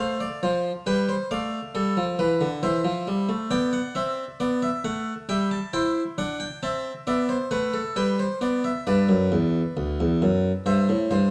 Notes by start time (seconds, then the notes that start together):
0.00 A3 C5 F5
0.20 D5
0.43 F3 C5
0.86 G3 B4 G5
1.09 C5
1.31 A3 D5 F5
1.75 G3 A4
1.97 F3
2.19 E3 B4
2.41 D3
2.63 E3 C5 E5
2.84 F3
3.07 G3
3.29 A3
3.51 B3 D5 G5
3.73 F#5
3.95 C4 E5
4.40 B3 D5
4.62 E5
4.84 A3 F#5
5.29 G3 E5 G5
5.51 A5
5.73 E4 C5 G5
6.18 D4 D5 F#5
6.40 G5
6.63 C4 E5 A5
7.07 B3 D5 E5
7.29 C5
7.51 A3 B4 F#5
7.73 A4
7.96 G3 B4 G5
8.19 C5
8.41 B3 D5
8.64 E5
8.87 G2 B4 D5
9.09 F#2
9.32 E2
9.77 D2
10.00 E2
10.22 F#2
10.66 G2 C5 E5
10.89 A2
11.11 G2 C5